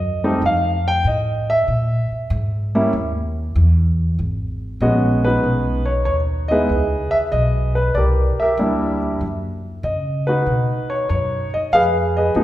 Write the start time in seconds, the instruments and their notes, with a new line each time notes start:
Already playing: upright bass F#2, grand piano D#5
0.24 grand piano G3 A3 C4 D#4
0.41 upright bass F2
0.46 grand piano F5
0.88 grand piano G5
1.04 upright bass A2, grand piano D#5
1.50 grand piano E5
1.68 upright bass A#2
2.12 muted upright bass stroke
2.30 upright bass G#2
2.75 grand piano G3 A#3 C#4 E4
2.93 upright bass D#2
3.56 upright bass E2
4.19 upright bass G#1
4.81 upright bass A#1, grand piano G#3 B3 C#4 F#4 D#5
5.25 grand piano D#4 F#4 B4
5.44 upright bass B1
5.86 grand piano C#5
6.05 upright bass D#2, grand piano C#5
6.48 grand piano G#3 B3 D#4 E4 G#4 B4 D#5
6.69 upright bass C#2
7.11 grand piano E5, muted upright bass stroke
7.32 upright bass B1, grand piano D#5
7.75 grand piano B4
7.95 upright bass C2, grand piano G4 A#4 D5
8.38 grand piano E5, muted upright bass stroke
8.42 grand piano G4 A#4
8.57 upright bass D2, grand piano G3 A#3 D4 E4
9.21 upright bass F#2
9.83 upright bass C#3, grand piano D#5
10.27 grand piano D#4 F#4 B4
10.46 upright bass B2
10.90 grand piano C#5
11.09 upright bass F#2, grand piano C#5
11.53 grand piano D#5, muted upright bass stroke
11.72 upright bass F2, grand piano G#4 B4 F5
12.17 grand piano G#4 B4 D#5
12.35 upright bass D#2, grand piano F3 G#3 B3 D#4